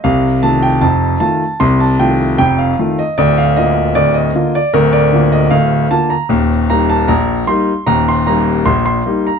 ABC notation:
X:1
M:2/4
L:1/16
Q:1/4=76
K:Bb
V:1 name="Grand piano"
f2 a g a2 a2 | c' a g2 g f2 e | d f e2 d e2 d | B d2 e f2 a b- |
b2 b a b2 c'2 | b c' b2 c' c'2 b |]
V:2 name="Grand piano" clef=bass
[C,,C,]2 [E,A,F]2 [F,,,F,,]2 [E,A,F]2 | [C,,C,]2 [E,A,F]2 [F,,,F,,]2 [E,A,F]2 | [D,,,D,,]2 [D,B,F]2 [D,,,D,,]2 [D,B,F]2 | [D,,,D,,]2 [D,B,F]2 [D,,,D,,]2 [D,B,F]2 |
[E,,,E,,]2 [G,B,E]2 [B,,,B,,]2 [G,B,E]2 | [E,,,E,,]2 [G,B,E]2 [B,,,B,,]2 [G,B,E]2 |]